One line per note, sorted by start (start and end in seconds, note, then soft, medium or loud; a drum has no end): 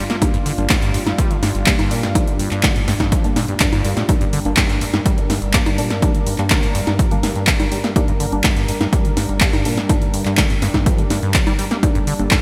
0.00 12.42 G2 medium
0.00 12.42 G3 medium
0.00 12.42 D4 medium
0.00 4.07 F4 medium
0.10 0.16 A#3 medium
0.10 snare medium
0.10 closed hi-hat soft
0.22 0.26 G2 medium
0.22 0.32 G3 medium
0.22 0.32 A#3 medium
0.22 0.32 D4 loud
0.22 kick loud
0.22 closed hi-hat medium
0.22 high conga medium
0.34 0.38 G2 loud
0.34 closed hi-hat soft
0.46 0.53 D3 loud
0.46 open hi-hat loud
0.58 0.68 G1 medium
0.58 0.64 G3 medium
0.58 0.64 A#3 medium
0.58 0.64 D4 loud
0.58 closed hi-hat soft
0.70 0.77 G2 medium
0.70 kick loud
0.70 snare medium
0.70 clap loud
0.70 closed hi-hat loud
0.70 high conga soft
0.82 0.92 G2 medium
0.82 closed hi-hat soft
0.94 0.98 G2 medium
0.94 open hi-hat loud
1.06 1.13 G2 medium
1.06 snare medium
1.06 closed hi-hat soft
1.06 high conga medium
1.18 1.32 G3 medium
1.18 kick loud
1.18 closed hi-hat loud
1.31 1.37 D3 loud
1.31 closed hi-hat soft
1.43 1.53 G2 medium
1.43 snare medium
1.43 open hi-hat loud
1.43 high conga soft
1.55 1.65 G1 medium
1.55 closed hi-hat soft
1.66 1.74 C3 loud
1.66 1.73 G3 loud
1.66 1.73 A#3 medium
1.66 1.73 D4 loud
1.66 kick loud
1.66 clap loud
1.66 closed hi-hat medium
1.79 1.93 G2 medium
1.79 closed hi-hat soft
1.79 high conga medium
1.91 2.05 A#2 loud
1.91 2.01 G3 medium
1.91 2.01 A#3 medium
1.91 2.01 D4 medium
1.91 open hi-hat loud
2.03 2.17 G2 medium
2.03 snare medium
2.03 closed hi-hat soft
2.15 2.29 F3 medium
2.15 2.49 G3 medium
2.15 2.49 A#3 medium
2.15 2.49 D4 medium
2.15 kick loud
2.15 closed hi-hat loud
2.15 high conga medium
2.27 2.34 D3 loud
2.27 closed hi-hat soft
2.39 2.49 G2 medium
2.39 open hi-hat loud
2.51 2.65 G2 loud
2.51 2.58 G3 medium
2.51 2.58 A#3 medium
2.51 2.58 D4 medium
2.51 clap soft
2.51 closed hi-hat soft
2.63 2.77 D3 medium
2.63 kick loud
2.63 snare medium
2.63 clap loud
2.63 closed hi-hat loud
2.63 high conga soft
2.76 2.80 G2 loud
2.76 closed hi-hat soft
2.88 2.95 G2 loud
2.88 snare medium
2.88 open hi-hat loud
3.00 3.13 G2 medium
3.00 kick medium
3.00 snare medium
3.00 closed hi-hat soft
3.00 high conga medium
3.12 3.26 F3 medium
3.12 kick loud
3.12 closed hi-hat loud
3.24 3.31 D3 loud
3.24 3.34 G3 medium
3.24 3.34 A#3 medium
3.24 3.34 D4 medium
3.24 closed hi-hat soft
3.36 3.46 A#2 medium
3.36 snare medium
3.36 open hi-hat loud
3.36 high conga soft
3.48 3.55 G2 medium
3.48 closed hi-hat soft
3.60 3.67 G2 loud
3.60 3.67 G3 loud
3.60 3.67 A#3 medium
3.60 3.67 D4 loud
3.60 kick loud
3.60 clap loud
3.60 closed hi-hat loud
3.73 3.83 G2 loud
3.73 closed hi-hat soft
3.73 high conga medium
3.85 3.95 G2 medium
3.85 4.06 G3 medium
3.85 4.06 A#3 medium
3.85 4.06 F4 medium
3.85 open hi-hat loud
3.97 4.03 A2 medium
3.97 snare medium
3.97 closed hi-hat soft
4.09 4.13 G2 medium
4.09 4.19 G3 medium
4.09 4.19 A#3 medium
4.09 4.19 D4 loud
4.09 11.81 A#4 loud
4.09 kick loud
4.09 closed hi-hat loud
4.09 high conga medium
4.21 4.25 G2 loud
4.21 closed hi-hat soft
4.33 4.40 D3 loud
4.33 open hi-hat loud
4.45 4.55 G1 medium
4.45 4.52 G3 loud
4.45 4.52 A#3 medium
4.45 4.52 D4 loud
4.45 closed hi-hat soft
4.57 4.64 G2 medium
4.57 kick loud
4.57 snare medium
4.57 clap loud
4.57 closed hi-hat loud
4.57 high conga soft
4.69 4.79 G2 medium
4.69 closed hi-hat soft
4.81 4.85 G2 medium
4.81 open hi-hat loud
4.94 5.00 G2 medium
4.94 snare medium
4.94 closed hi-hat soft
4.94 high conga medium
5.06 5.19 G3 medium
5.06 kick loud
5.06 closed hi-hat loud
5.18 5.24 D3 loud
5.18 closed hi-hat soft
5.30 5.40 G2 medium
5.30 snare medium
5.30 open hi-hat loud
5.30 high conga soft
5.42 5.55 G1 medium
5.42 closed hi-hat soft
5.53 5.61 G2 loud
5.53 5.61 G3 loud
5.53 5.61 A#3 medium
5.53 5.60 D4 loud
5.53 kick loud
5.53 clap loud
5.53 closed hi-hat loud
5.66 5.80 G2 medium
5.66 closed hi-hat soft
5.66 high conga medium
5.78 5.92 A#2 loud
5.78 5.89 G3 medium
5.78 5.89 A#3 medium
5.78 5.89 D4 medium
5.78 open hi-hat loud
5.90 6.04 G2 medium
5.90 snare medium
5.90 closed hi-hat soft
6.02 6.16 F3 medium
6.02 6.36 G3 medium
6.02 6.36 A#3 medium
6.02 6.36 D4 medium
6.02 kick loud
6.02 closed hi-hat medium
6.02 high conga medium
6.15 6.21 D3 loud
6.15 closed hi-hat soft
6.27 6.37 G2 medium
6.27 open hi-hat loud
6.38 6.52 G2 loud
6.38 6.45 G3 medium
6.38 6.45 A#3 medium
6.38 6.45 D4 medium
6.38 clap soft
6.38 closed hi-hat soft
6.50 6.64 D3 medium
6.50 kick loud
6.50 snare medium
6.50 clap loud
6.50 closed hi-hat loud
6.50 high conga soft
6.63 6.67 G2 loud
6.63 closed hi-hat soft
6.75 6.82 G2 loud
6.75 open hi-hat loud
6.87 7.01 G2 medium
6.87 snare medium
6.87 closed hi-hat soft
6.87 high conga medium
6.99 7.13 F3 medium
6.99 kick loud
6.99 closed hi-hat loud
7.11 7.18 D3 loud
7.11 7.22 G3 medium
7.11 7.22 A#3 medium
7.11 7.22 D4 medium
7.11 closed hi-hat soft
7.23 7.33 G2 medium
7.23 snare medium
7.23 open hi-hat loud
7.23 high conga soft
7.36 7.49 G2 loud
7.36 closed hi-hat soft
7.47 7.54 D3 medium
7.47 kick loud
7.47 clap loud
7.47 closed hi-hat loud
7.60 7.66 G3 medium
7.60 closed hi-hat soft
7.60 high conga medium
7.72 7.78 G3 medium
7.72 open hi-hat loud
7.84 7.91 A#3 medium
7.84 snare medium
7.84 closed hi-hat soft
7.96 8.00 G2 medium
7.96 8.06 G3 medium
7.96 8.06 A#3 medium
7.96 8.06 D4 medium
7.96 kick loud
7.96 closed hi-hat medium
7.96 high conga medium
8.08 8.12 G2 loud
8.08 closed hi-hat soft
8.20 8.27 D3 loud
8.20 open hi-hat loud
8.32 8.42 G1 medium
8.32 8.39 G3 loud
8.32 8.39 A#3 medium
8.32 8.39 D4 loud
8.32 closed hi-hat soft
8.44 8.51 G2 medium
8.44 kick loud
8.44 snare medium
8.44 clap loud
8.44 closed hi-hat medium
8.44 high conga soft
8.56 8.66 G2 medium
8.56 closed hi-hat soft
8.68 8.72 G2 medium
8.68 open hi-hat loud
8.81 8.87 G2 medium
8.81 snare medium
8.81 closed hi-hat soft
8.81 high conga medium
8.93 9.06 G3 medium
8.93 kick loud
8.93 closed hi-hat medium
9.05 9.11 D3 loud
9.05 closed hi-hat soft
9.17 9.27 G2 medium
9.17 snare medium
9.17 open hi-hat loud
9.17 high conga soft
9.29 9.42 G1 medium
9.29 closed hi-hat soft
9.41 9.48 G2 loud
9.41 9.48 G3 loud
9.41 9.48 A#3 medium
9.41 9.48 D4 loud
9.41 kick loud
9.41 clap loud
9.41 closed hi-hat medium
9.53 9.67 G2 medium
9.53 closed hi-hat soft
9.53 high conga medium
9.65 9.79 A#2 loud
9.65 9.76 G3 medium
9.65 9.76 A#3 medium
9.65 9.76 D4 medium
9.65 open hi-hat loud
9.77 9.91 G2 medium
9.77 snare medium
9.77 closed hi-hat soft
9.89 10.03 F3 medium
9.89 10.23 G3 medium
9.89 10.23 A#3 medium
9.89 10.23 D4 medium
9.89 kick loud
9.89 closed hi-hat medium
9.89 high conga medium
10.02 10.08 D3 loud
10.02 closed hi-hat soft
10.14 10.24 G2 medium
10.14 open hi-hat loud
10.25 10.39 G2 loud
10.25 10.32 G3 medium
10.25 10.32 A#3 medium
10.25 10.32 D4 medium
10.25 clap soft
10.25 closed hi-hat soft
10.37 10.52 D3 medium
10.37 kick loud
10.37 snare medium
10.37 clap loud
10.37 closed hi-hat medium
10.37 high conga soft
10.50 10.54 G2 loud
10.50 closed hi-hat soft
10.62 10.69 G2 loud
10.62 snare medium
10.62 open hi-hat loud
10.74 10.88 G2 medium
10.74 kick medium
10.74 snare medium
10.74 closed hi-hat soft
10.74 high conga medium
10.86 11.00 F3 medium
10.86 kick loud
10.86 closed hi-hat medium
10.98 11.05 D3 loud
10.98 11.09 G3 medium
10.98 11.09 A#3 medium
10.98 11.09 D4 medium
10.98 closed hi-hat soft
11.10 11.21 G2 medium
11.10 snare medium
11.10 open hi-hat loud
11.10 high conga soft
11.23 11.36 G2 loud
11.23 closed hi-hat soft
11.34 11.41 D3 medium
11.34 kick loud
11.34 clap loud
11.34 closed hi-hat medium
11.47 11.53 G3 medium
11.47 closed hi-hat soft
11.47 high conga medium
11.59 11.66 G3 medium
11.59 open hi-hat loud
11.71 11.78 A#3 medium
11.71 snare medium
11.71 closed hi-hat soft
11.83 11.87 G2 medium
11.83 11.93 G3 medium
11.83 11.93 A#3 medium
11.83 11.93 D4 loud
11.83 12.42 A4 loud
11.83 kick loud
11.83 closed hi-hat medium
11.83 high conga medium
11.95 11.99 G2 loud
11.95 closed hi-hat soft
12.07 12.14 D3 loud
12.07 open hi-hat loud
12.19 12.29 G1 medium
12.19 12.26 G3 loud
12.19 12.26 A#3 medium
12.19 12.26 D4 loud
12.19 closed hi-hat soft
12.31 12.38 G2 medium
12.31 kick loud
12.31 snare medium
12.31 clap loud
12.31 closed hi-hat medium
12.31 high conga soft